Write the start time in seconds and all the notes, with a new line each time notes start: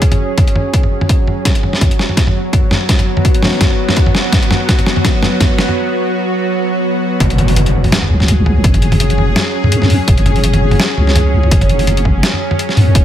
Already playing: F#3 C#4 G#4
0.02 kick, closed hi-hat
0.12 closed hi-hat, mid tom
0.38 kick, closed hi-hat, mid tom
0.48 closed hi-hat
0.56 mid tom
0.73 kick, closed hi-hat
0.83 mid tom
1.01 mid tom
1.09 kick, closed hi-hat
1.27 mid tom
1.45 B3 F#4, kick, snare, closed hi-hat
1.55 closed hi-hat
1.63 mid tom
1.73 snare
1.81 kick, closed hi-hat, mid tom
1.91 closed hi-hat
1.99 snare
2.09 mid tom
2.17 kick, snare, closed hi-hat
2.27 mid tom
2.53 kick, closed hi-hat, mid tom
2.71 snare, mid tom
2.89 kick, snare, closed hi-hat
2.99 closed hi-hat, mid tom
3.17 mid tom
3.25 kick, closed hi-hat
3.34 closed hi-hat
3.42 snare, mid tom
3.45 snare
3.48 snare
3.50 snare
3.53 snare
3.55 snare
3.57 snare
3.59 snare
3.61 kick, snare, closed hi-hat, mid tom
3.89 snare, mid tom
3.97 kick, closed hi-hat
4.06 mid tom
4.15 snare
4.33 kick, snare, closed hi-hat, mid tom
4.42 closed hi-hat
4.51 snare, mid tom
4.69 kick, snare, closed hi-hat
4.79 closed hi-hat, mid tom
4.86 snare
4.96 mid tom
5.05 kick, snare, closed hi-hat
5.23 snare, mid tom
5.41 kick, snare, closed hi-hat, mid tom
5.58 snare
5.69 mid tom
7.20 F#1 F#3 C#4 G#4, kick, closed hi-hat, impact
7.30 closed hi-hat
7.38 closed hi-hat, mid tom
7.48 open hi-hat
7.56 closed hi-hat, mid tom
7.66 closed hi-hat
7.84 mid tom, open hi-hat
7.92 snare, closed hi-hat
8.02 mid tom
8.10 C#2
8.20 snare
8.28 closed hi-hat, mid tom
8.46 C#2, mid tom
8.64 F#1, kick, closed hi-hat
8.74 closed hi-hat, mid tom
8.82 closed hi-hat
8.92 mid tom, open hi-hat
9.00 closed hi-hat
9.10 closed hi-hat
9.18 mid tom
9.36 snare, closed hi-hat, mid tom
9.64 F#2, mid tom
9.72 closed hi-hat
9.82 snare, mid tom
9.90 open hi-hat
10.08 F#1, kick, closed hi-hat, mid tom
10.18 closed hi-hat
10.26 closed hi-hat, mid tom
10.36 open hi-hat
10.44 closed hi-hat
10.53 closed hi-hat, mid tom
10.71 mid tom, open hi-hat
10.80 snare, closed hi-hat
10.97 C#2, mid tom
11.07 snare
11.15 closed hi-hat, mid tom
11.34 C#2
11.43 mid tom
11.51 F#1, kick, closed hi-hat
11.61 closed hi-hat, mid tom
11.69 closed hi-hat
11.79 open hi-hat
11.87 closed hi-hat, mid tom
11.97 closed hi-hat
12.05 kick, mid tom
12.23 snare, closed hi-hat
12.33 mid tom
12.51 mid tom
12.59 closed hi-hat
12.69 snare
12.77 F#2, mid tom, open hi-hat
12.95 F#1, kick, closed hi-hat